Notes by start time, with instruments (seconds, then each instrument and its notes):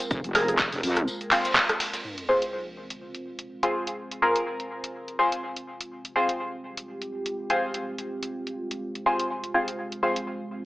Already playing: ambient pad G#3 C4 F4 A#4
0.00 closed hi-hat, tambourine
0.11 wobble bass F1, kick, tambourine, cabasa
0.24 wobble bass F1, closed hi-hat, cabasa
0.35 synth stab C4 F4 G#4 A#4, synth pluck G#4, cross-stick, open hi-hat, tambourine
0.48 synth pluck G#4, closed hi-hat, cabasa
0.59 kick, snare, clap, tambourine, cabasa
0.72 wobble bass F1, open hi-hat, cabasa
0.83 wobble bass F2, open hi-hat, tambourine
0.96 cross-stick, closed hi-hat, cabasa
1.08 tambourine, cabasa
1.21 closed hi-hat, cabasa
1.31 synth stab C4 F4 G#4 C5, snare, clap, open hi-hat
1.39 snare, open hi-hat
1.45 snare, closed hi-hat, open hi-hat, cabasa
1.51 snare, open hi-hat
1.55 clap, tambourine, cabasa
1.69 cross-stick, closed hi-hat, cabasa
1.80 snare, open hi-hat
1.93 snare, closed hi-hat, open hi-hat, cabasa
2.04 ambient pad G#3 C4 F4 C5, sub drop
2.18 closed hi-hat
2.29 synth stab C4 F4 G#4 C5
2.42 closed hi-hat
2.90 closed hi-hat
3.15 closed hi-hat
3.39 closed hi-hat
3.63 synth stab C4 F4 G#4 C5, closed hi-hat
3.87 closed hi-hat
4.11 closed hi-hat
4.22 synth stab C4 F4 G#4 A#4
4.36 closed hi-hat
4.60 closed hi-hat
4.84 closed hi-hat
5.08 closed hi-hat
5.19 synth stab C4 F4 G#4 C5
5.32 closed hi-hat
5.56 closed hi-hat
5.81 closed hi-hat
5.91 ambient pad G4
6.05 closed hi-hat
6.16 synth stab C4 F4 G#4 C5
6.29 closed hi-hat
6.77 closed hi-hat
7.02 closed hi-hat
7.26 closed hi-hat
7.50 synth stab C4 F4 G#4 C5, closed hi-hat
7.74 closed hi-hat
7.98 closed hi-hat
8.23 closed hi-hat
8.47 closed hi-hat
8.71 closed hi-hat
8.95 closed hi-hat
9.06 synth stab C4 F4 G#4 C5
9.20 closed hi-hat
9.44 closed hi-hat
9.54 synth stab C4 F4 G#4 C5
9.68 closed hi-hat
9.79 ambient pad C5
9.92 closed hi-hat
10.03 synth stab C4 F4 G#4 C5
10.16 closed hi-hat